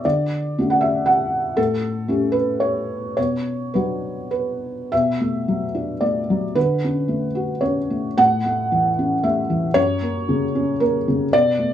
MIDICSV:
0, 0, Header, 1, 2, 480
1, 0, Start_track
1, 0, Key_signature, 2, "minor"
1, 0, Tempo, 513699
1, 38, Time_signature, 3, 2, 24, 8
1, 2437, Tempo, 574163
1, 4837, Tempo, 540541
1, 7717, Tempo, 519931
1, 10498, End_track
2, 0, Start_track
2, 0, Title_t, "Felt piano"
2, 0, Program_c, 0, 0
2, 0, Control_c, 0, 64, 127
2, 46, Note_on_c, 0, 74, 78
2, 48, Note_on_c, 0, 50, 54
2, 54, Control_c, 0, 64, 0
2, 228, Control_c, 0, 64, 127
2, 523, Note_off_c, 0, 50, 0
2, 546, Note_on_c, 0, 61, 40
2, 548, Note_on_c, 0, 57, 39
2, 560, Note_on_c, 0, 66, 41
2, 654, Note_on_c, 0, 78, 70
2, 657, Note_off_c, 0, 74, 0
2, 754, Note_on_c, 0, 76, 74
2, 774, Note_off_c, 0, 78, 0
2, 988, Note_on_c, 0, 78, 82
2, 999, Note_off_c, 0, 76, 0
2, 1441, Note_off_c, 0, 61, 0
2, 1442, Note_off_c, 0, 57, 0
2, 1448, Note_off_c, 0, 66, 0
2, 1462, Note_off_c, 0, 78, 0
2, 1463, Note_on_c, 0, 69, 86
2, 1474, Note_on_c, 0, 45, 60
2, 1488, Control_c, 0, 64, 0
2, 1611, Control_c, 0, 64, 127
2, 1932, Note_off_c, 0, 45, 0
2, 1946, Note_on_c, 0, 57, 43
2, 1954, Note_on_c, 0, 61, 43
2, 1958, Note_on_c, 0, 67, 44
2, 2166, Note_on_c, 0, 71, 80
2, 2181, Note_off_c, 0, 69, 0
2, 2427, Note_off_c, 0, 71, 0
2, 2430, Note_on_c, 0, 73, 76
2, 2873, Note_off_c, 0, 57, 0
2, 2877, Note_off_c, 0, 61, 0
2, 2879, Note_off_c, 0, 67, 0
2, 2892, Note_off_c, 0, 73, 0
2, 2905, Note_on_c, 0, 73, 73
2, 2913, Note_on_c, 0, 47, 46
2, 2923, Control_c, 0, 64, 0
2, 3054, Control_c, 0, 64, 127
2, 3374, Note_off_c, 0, 47, 0
2, 3381, Note_on_c, 0, 71, 51
2, 3384, Note_off_c, 0, 73, 0
2, 3392, Note_on_c, 0, 54, 38
2, 3394, Note_on_c, 0, 62, 33
2, 3397, Note_on_c, 0, 66, 40
2, 3846, Note_off_c, 0, 71, 0
2, 3859, Note_on_c, 0, 71, 62
2, 4338, Note_off_c, 0, 54, 0
2, 4339, Note_off_c, 0, 62, 0
2, 4341, Note_off_c, 0, 66, 0
2, 4366, Note_off_c, 0, 71, 0
2, 4368, Note_on_c, 0, 76, 90
2, 4381, Note_on_c, 0, 47, 57
2, 4382, Control_c, 0, 64, 0
2, 4515, Control_c, 0, 64, 127
2, 4610, Note_on_c, 0, 57, 42
2, 4839, Note_on_c, 0, 54, 41
2, 4984, Note_off_c, 0, 57, 0
2, 5074, Note_on_c, 0, 62, 43
2, 5223, Note_off_c, 0, 54, 0
2, 5305, Note_on_c, 0, 74, 65
2, 5309, Note_on_c, 0, 57, 36
2, 5318, Note_off_c, 0, 76, 0
2, 5459, Note_off_c, 0, 62, 0
2, 5566, Note_on_c, 0, 54, 41
2, 5696, Note_off_c, 0, 57, 0
2, 5767, Note_off_c, 0, 47, 0
2, 5789, Note_off_c, 0, 74, 0
2, 5792, Note_on_c, 0, 71, 91
2, 5796, Note_on_c, 0, 50, 58
2, 5800, Note_off_c, 0, 54, 0
2, 5813, Control_c, 0, 64, 0
2, 5982, Control_c, 0, 64, 127
2, 6049, Note_on_c, 0, 61, 41
2, 6261, Note_on_c, 0, 57, 39
2, 6419, Note_off_c, 0, 61, 0
2, 6499, Note_on_c, 0, 66, 47
2, 6639, Note_off_c, 0, 57, 0
2, 6727, Note_on_c, 0, 73, 63
2, 6738, Note_off_c, 0, 71, 0
2, 6740, Note_on_c, 0, 61, 42
2, 6884, Note_off_c, 0, 66, 0
2, 6989, Note_on_c, 0, 57, 41
2, 7142, Note_off_c, 0, 61, 0
2, 7207, Note_off_c, 0, 50, 0
2, 7231, Note_on_c, 0, 78, 101
2, 7236, Note_off_c, 0, 73, 0
2, 7236, Note_on_c, 0, 45, 62
2, 7242, Note_off_c, 0, 57, 0
2, 7259, Control_c, 0, 64, 0
2, 7417, Control_c, 0, 64, 127
2, 7480, Note_on_c, 0, 57, 43
2, 7713, Note_on_c, 0, 52, 51
2, 7858, Note_off_c, 0, 57, 0
2, 7961, Note_on_c, 0, 61, 44
2, 8099, Note_off_c, 0, 52, 0
2, 8190, Note_on_c, 0, 76, 72
2, 8191, Note_off_c, 0, 78, 0
2, 8194, Note_on_c, 0, 57, 49
2, 8344, Note_off_c, 0, 61, 0
2, 8432, Note_on_c, 0, 52, 48
2, 8582, Note_off_c, 0, 57, 0
2, 8640, Note_off_c, 0, 45, 0
2, 8659, Note_on_c, 0, 73, 112
2, 8665, Note_on_c, 0, 42, 62
2, 8676, Note_off_c, 0, 52, 0
2, 8676, Note_off_c, 0, 76, 0
2, 8694, Control_c, 0, 64, 0
2, 8865, Control_c, 0, 64, 127
2, 8915, Note_on_c, 0, 58, 48
2, 9162, Note_on_c, 0, 49, 55
2, 9303, Note_off_c, 0, 58, 0
2, 9406, Note_on_c, 0, 61, 50
2, 9547, Note_off_c, 0, 49, 0
2, 9632, Note_off_c, 0, 73, 0
2, 9637, Note_on_c, 0, 70, 71
2, 9645, Note_on_c, 0, 58, 52
2, 9789, Note_off_c, 0, 61, 0
2, 9880, Note_off_c, 0, 70, 0
2, 9893, Note_on_c, 0, 49, 51
2, 10028, Note_off_c, 0, 58, 0
2, 10078, Note_off_c, 0, 42, 0
2, 10125, Note_on_c, 0, 74, 112
2, 10127, Note_off_c, 0, 49, 0
2, 10130, Note_on_c, 0, 47, 66
2, 10139, Control_c, 0, 64, 0
2, 10270, Control_c, 0, 64, 127
2, 10363, Note_on_c, 0, 57, 50
2, 10498, Note_off_c, 0, 47, 0
2, 10498, Note_off_c, 0, 57, 0
2, 10498, Note_off_c, 0, 74, 0
2, 10498, End_track
0, 0, End_of_file